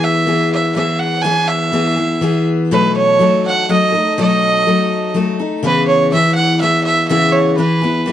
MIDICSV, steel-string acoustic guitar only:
0, 0, Header, 1, 2, 480
1, 0, Start_track
1, 0, Tempo, 487805
1, 1222, Time_signature, 3, 2, 24, 8
1, 7994, End_track
2, 0, Start_track
2, 0, Title_t, "Steel-string acoustic guitar"
2, 0, Program_c, 0, 25
2, 0, Note_on_c, 0, 52, 64
2, 0, Note_on_c, 0, 59, 73
2, 0, Note_on_c, 0, 64, 68
2, 0, Note_on_c, 0, 68, 81
2, 247, Note_off_c, 0, 52, 0
2, 259, Note_on_c, 0, 52, 52
2, 261, Note_off_c, 0, 59, 0
2, 264, Note_off_c, 0, 64, 0
2, 265, Note_on_c, 0, 59, 54
2, 270, Note_off_c, 0, 68, 0
2, 276, Note_on_c, 0, 64, 58
2, 281, Note_on_c, 0, 68, 64
2, 725, Note_off_c, 0, 52, 0
2, 737, Note_on_c, 0, 52, 53
2, 740, Note_off_c, 0, 64, 0
2, 748, Note_off_c, 0, 59, 0
2, 751, Note_off_c, 0, 68, 0
2, 752, Note_on_c, 0, 59, 56
2, 752, Note_on_c, 0, 64, 54
2, 762, Note_on_c, 0, 68, 59
2, 1208, Note_off_c, 0, 52, 0
2, 1220, Note_on_c, 0, 52, 71
2, 1221, Note_off_c, 0, 59, 0
2, 1222, Note_off_c, 0, 64, 0
2, 1225, Note_on_c, 0, 59, 71
2, 1228, Note_off_c, 0, 68, 0
2, 1233, Note_on_c, 0, 64, 69
2, 1240, Note_on_c, 0, 68, 80
2, 1681, Note_off_c, 0, 52, 0
2, 1693, Note_on_c, 0, 52, 56
2, 1697, Note_off_c, 0, 64, 0
2, 1699, Note_off_c, 0, 59, 0
2, 1703, Note_on_c, 0, 59, 62
2, 1705, Note_off_c, 0, 68, 0
2, 1709, Note_on_c, 0, 64, 55
2, 1716, Note_on_c, 0, 68, 65
2, 1917, Note_off_c, 0, 68, 0
2, 1928, Note_off_c, 0, 64, 0
2, 1929, Note_on_c, 0, 68, 52
2, 1937, Note_off_c, 0, 52, 0
2, 1940, Note_off_c, 0, 59, 0
2, 1940, Note_on_c, 0, 64, 44
2, 1952, Note_on_c, 0, 59, 40
2, 2173, Note_off_c, 0, 59, 0
2, 2175, Note_off_c, 0, 68, 0
2, 2176, Note_off_c, 0, 64, 0
2, 2176, Note_on_c, 0, 52, 56
2, 2185, Note_on_c, 0, 59, 64
2, 2188, Note_on_c, 0, 64, 61
2, 2200, Note_on_c, 0, 68, 68
2, 2658, Note_off_c, 0, 52, 0
2, 2664, Note_off_c, 0, 64, 0
2, 2669, Note_on_c, 0, 47, 70
2, 2670, Note_off_c, 0, 68, 0
2, 2674, Note_on_c, 0, 54, 72
2, 2675, Note_off_c, 0, 59, 0
2, 2679, Note_on_c, 0, 57, 73
2, 2683, Note_on_c, 0, 63, 67
2, 2686, Note_on_c, 0, 69, 75
2, 3129, Note_off_c, 0, 54, 0
2, 3141, Note_off_c, 0, 57, 0
2, 3141, Note_on_c, 0, 54, 59
2, 3145, Note_off_c, 0, 47, 0
2, 3149, Note_off_c, 0, 63, 0
2, 3152, Note_on_c, 0, 57, 58
2, 3153, Note_off_c, 0, 69, 0
2, 3160, Note_on_c, 0, 63, 62
2, 3165, Note_on_c, 0, 69, 61
2, 3620, Note_off_c, 0, 54, 0
2, 3626, Note_off_c, 0, 57, 0
2, 3630, Note_off_c, 0, 63, 0
2, 3633, Note_off_c, 0, 69, 0
2, 3633, Note_on_c, 0, 54, 53
2, 3637, Note_on_c, 0, 57, 60
2, 3644, Note_on_c, 0, 63, 61
2, 3656, Note_on_c, 0, 69, 57
2, 3848, Note_off_c, 0, 69, 0
2, 3859, Note_on_c, 0, 69, 46
2, 3864, Note_off_c, 0, 63, 0
2, 3867, Note_off_c, 0, 54, 0
2, 3869, Note_off_c, 0, 57, 0
2, 3876, Note_on_c, 0, 63, 38
2, 3886, Note_on_c, 0, 57, 37
2, 4100, Note_off_c, 0, 69, 0
2, 4108, Note_off_c, 0, 63, 0
2, 4110, Note_off_c, 0, 57, 0
2, 4112, Note_on_c, 0, 47, 62
2, 4113, Note_on_c, 0, 54, 76
2, 4122, Note_on_c, 0, 57, 72
2, 4126, Note_on_c, 0, 63, 80
2, 4127, Note_on_c, 0, 69, 73
2, 4577, Note_off_c, 0, 54, 0
2, 4580, Note_off_c, 0, 57, 0
2, 4585, Note_off_c, 0, 47, 0
2, 4588, Note_on_c, 0, 54, 56
2, 4592, Note_on_c, 0, 57, 53
2, 4593, Note_off_c, 0, 63, 0
2, 4593, Note_off_c, 0, 69, 0
2, 4603, Note_on_c, 0, 63, 59
2, 4609, Note_on_c, 0, 69, 64
2, 5048, Note_off_c, 0, 54, 0
2, 5055, Note_off_c, 0, 57, 0
2, 5060, Note_on_c, 0, 54, 55
2, 5063, Note_off_c, 0, 63, 0
2, 5067, Note_on_c, 0, 57, 64
2, 5074, Note_off_c, 0, 69, 0
2, 5075, Note_on_c, 0, 63, 67
2, 5084, Note_on_c, 0, 69, 67
2, 5295, Note_off_c, 0, 69, 0
2, 5299, Note_off_c, 0, 54, 0
2, 5299, Note_off_c, 0, 63, 0
2, 5303, Note_off_c, 0, 57, 0
2, 5307, Note_on_c, 0, 69, 47
2, 5311, Note_on_c, 0, 63, 43
2, 5327, Note_on_c, 0, 57, 40
2, 5536, Note_on_c, 0, 49, 63
2, 5543, Note_off_c, 0, 69, 0
2, 5545, Note_off_c, 0, 63, 0
2, 5545, Note_on_c, 0, 52, 66
2, 5546, Note_off_c, 0, 57, 0
2, 5550, Note_on_c, 0, 59, 69
2, 5554, Note_on_c, 0, 64, 73
2, 5556, Note_on_c, 0, 68, 76
2, 6014, Note_off_c, 0, 52, 0
2, 6017, Note_off_c, 0, 49, 0
2, 6020, Note_off_c, 0, 59, 0
2, 6026, Note_off_c, 0, 64, 0
2, 6026, Note_on_c, 0, 52, 52
2, 6027, Note_off_c, 0, 68, 0
2, 6032, Note_on_c, 0, 59, 56
2, 6039, Note_on_c, 0, 64, 54
2, 6052, Note_on_c, 0, 68, 60
2, 6496, Note_off_c, 0, 52, 0
2, 6505, Note_off_c, 0, 59, 0
2, 6507, Note_on_c, 0, 52, 55
2, 6508, Note_off_c, 0, 64, 0
2, 6515, Note_off_c, 0, 68, 0
2, 6522, Note_on_c, 0, 59, 57
2, 6526, Note_on_c, 0, 64, 52
2, 6531, Note_on_c, 0, 68, 56
2, 6976, Note_off_c, 0, 52, 0
2, 6978, Note_off_c, 0, 59, 0
2, 6980, Note_on_c, 0, 49, 72
2, 6982, Note_off_c, 0, 64, 0
2, 6984, Note_off_c, 0, 68, 0
2, 6988, Note_on_c, 0, 52, 69
2, 6990, Note_on_c, 0, 59, 78
2, 6994, Note_on_c, 0, 64, 83
2, 6996, Note_on_c, 0, 68, 84
2, 7445, Note_off_c, 0, 52, 0
2, 7452, Note_off_c, 0, 59, 0
2, 7457, Note_on_c, 0, 52, 55
2, 7459, Note_off_c, 0, 49, 0
2, 7464, Note_off_c, 0, 64, 0
2, 7464, Note_on_c, 0, 59, 59
2, 7467, Note_off_c, 0, 68, 0
2, 7476, Note_on_c, 0, 64, 56
2, 7478, Note_on_c, 0, 68, 58
2, 7679, Note_off_c, 0, 68, 0
2, 7691, Note_on_c, 0, 68, 49
2, 7695, Note_off_c, 0, 64, 0
2, 7698, Note_off_c, 0, 52, 0
2, 7701, Note_off_c, 0, 59, 0
2, 7707, Note_on_c, 0, 64, 46
2, 7715, Note_on_c, 0, 59, 41
2, 7928, Note_on_c, 0, 52, 59
2, 7931, Note_off_c, 0, 59, 0
2, 7935, Note_off_c, 0, 64, 0
2, 7935, Note_off_c, 0, 68, 0
2, 7943, Note_on_c, 0, 59, 62
2, 7947, Note_on_c, 0, 64, 63
2, 7955, Note_on_c, 0, 68, 60
2, 7994, Note_off_c, 0, 52, 0
2, 7994, Note_off_c, 0, 59, 0
2, 7994, Note_off_c, 0, 64, 0
2, 7994, Note_off_c, 0, 68, 0
2, 7994, End_track
0, 0, End_of_file